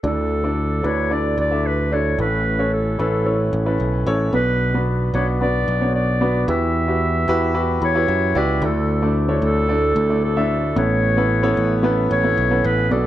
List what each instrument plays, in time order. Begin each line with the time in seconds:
0.03 picked electric bass D2, grand piano D3 D4 E4 A4 D5, clarinet A4
0.44 grand piano D4 E4 A4 D5
0.83 picked electric bass D2, grand piano D4 E4 A4 B4, clarinet C#5
1.11 grand piano D4 E4 A4 D5, clarinet D5
1.38 picked electric bass D2, clarinet D5
1.51 grand piano D4 E4 A4 E5
1.67 clarinet B4
1.92 grand piano D4 E4 A4 D5, clarinet C#5
2.19 picked electric bass A1, grand piano A2 C#4 E4 A4 B4, clarinet B4
2.59 grand piano C#4 E4 A4 C#5
2.73 clarinet A4
2.99 picked electric bass A1, grand piano C#4 E4 A4 B4
3.26 grand piano C#4 E4 A4 C#5
3.53 picked electric bass A1
3.66 grand piano C#4 E4 A4 B4
3.80 picked electric bass B1
4.06 picked electric bass A1, grand piano C#4 E4 A4 C#5
4.33 picked electric bass B1, grand piano B2 B3 D4 F#4 B4, clarinet B4
4.74 grand piano B3 D4 F#4 B4
5.14 picked electric bass B1, grand piano B3 D4 F#4 B4, clarinet C#5
5.41 grand piano B3 D4 F#4 B4, clarinet D5
5.68 picked electric bass B1
5.81 grand piano B3 D4 F#4 C#5
5.95 clarinet D5
6.21 grand piano B3 D4 F#4 B4
6.48 picked electric bass E2, grand piano E3 E4 F#4 G4 B4, clarinet E5
6.88 grand piano E4 F#4 G4 B4
7.28 picked electric bass E2, grand piano E4 F#4 G4 B4
7.54 grand piano E4 F#4 G4 B4
7.82 picked electric bass E2, clarinet C#5, grand piano B5
7.95 grand piano E4 F#4 G4 B4
8.08 picked electric bass F#2, grand piano E5
8.35 picked electric bass C#2, grand piano E4 F#4 G4 D5, clarinet B4
8.62 picked electric bass D2, grand piano D3 A3 D4 E4 A4 D5, clarinet A4
9.02 grand piano A3 D4 E4 A4 D5
9.28 grand piano A3 D4 E4 A4 C#5
9.42 picked electric bass D2, clarinet A4
9.68 grand piano A3 D4 E4 A4 D5
9.96 picked electric bass D2
10.09 grand piano A3 D4 E4 A4 D5
10.24 clarinet A4
10.36 grand piano A3 D4 E4 A4 E5
10.76 picked electric bass A1, grand piano A2 B3 C#4 E4 A4 B4, clarinet C#5
11.17 grand piano B3 C#4 E4 A4 B4
11.43 grand piano B3 C#4 E4 A4 C#5
11.57 picked electric bass A1
11.83 grand piano B3 C#4 E4 A4 B4
12.11 picked electric bass A1, clarinet C#5
12.24 grand piano B3 C#4 E4 A4 B4
12.38 picked electric bass B1
12.51 grand piano B3 C#4 E4 A4 B4
12.64 picked electric bass A1, clarinet B4
12.91 picked electric bass B1, grand piano B2 B3 D4 F#4 B4 D5, clarinet A4